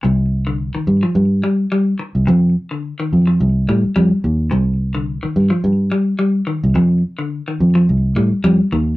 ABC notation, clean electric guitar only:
X:1
M:4/4
L:1/16
Q:"Swing 16ths" 1/4=107
K:Cdor
V:1 name="Clean electric guitar" clef=bass
C,2 z D,2 E,2 F,2 z G,2 G,2 z2 | C,2 z D,2 E,2 F,2 z G,2 G,2 z2 | C,2 z D,2 E,2 F,2 z G,2 G,2 E,2 | C,2 z D,2 E,2 F,2 z G,2 G,2 E,2 |]